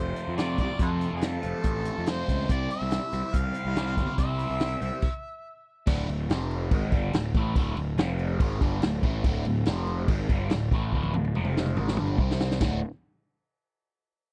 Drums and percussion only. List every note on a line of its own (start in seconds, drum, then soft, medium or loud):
0.16 closed hi-hat medium
0.38 snare loud
0.38 closed hi-hat medium
0.58 kick medium
0.58 closed hi-hat soft
0.79 kick loud
0.79 closed hi-hat medium
1.01 closed hi-hat medium
1.21 snare loud
1.21 closed hi-hat medium
1.43 closed hi-hat medium
1.64 kick loud
1.64 closed hi-hat medium
1.85 closed hi-hat medium
2.06 snare loud
2.06 closed hi-hat medium
2.28 kick medium
2.28 closed hi-hat medium
2.49 kick loud
2.49 closed hi-hat medium
2.70 closed hi-hat medium
2.91 snare medium
2.91 closed hi-hat medium
3.12 closed hi-hat medium
3.34 kick loud
3.34 closed hi-hat medium
3.54 closed hi-hat medium
3.76 snare loud
3.76 closed hi-hat medium
3.97 kick medium
3.97 closed hi-hat medium
4.18 kick loud
4.18 closed hi-hat medium
4.39 closed hi-hat medium
4.60 snare loud
4.60 closed hi-hat medium
4.81 closed hi-hat medium
5.02 kick loud
5.02 crash medium
5.87 kick loud
5.87 crash loud
5.87 crash medium
6.09 crash medium
6.30 snare loud
6.30 crash medium
6.51 crash medium
6.71 kick loud
6.71 crash medium
6.92 kick loud
6.92 crash medium
7.13 snare loud
7.13 crash medium
7.34 kick loud
7.34 crash medium
7.55 kick loud
7.55 crash medium
7.77 crash medium
7.98 snare loud
7.98 crash medium
8.19 crash medium
8.40 kick loud
8.40 crash medium
8.61 kick loud
8.61 crash medium
8.82 snare loud
8.82 crash medium
9.03 kick loud
9.03 crash medium
9.24 kick loud
9.24 crash medium
9.45 crash medium
9.65 snare loud
9.65 crash medium
9.87 crash medium
10.08 kick loud
10.08 crash medium
10.29 kick loud
10.29 crash medium
10.50 snare loud
10.50 crash medium
10.71 kick loud
10.71 crash medium
10.92 kick medium
11.03 high tom medium
11.14 high tom medium
11.25 high tom medium
11.35 mid tom medium
11.45 mid tom medium
11.57 snare medium
11.66 mid tom medium
11.77 mid tom medium
11.88 snare medium
11.97 mid tom loud
12.07 mid tom medium
12.18 kick loud
12.31 snare medium
12.40 snare loud
12.51 snare medium
12.61 kick medium
12.61 snare loud
12.61 ride bell medium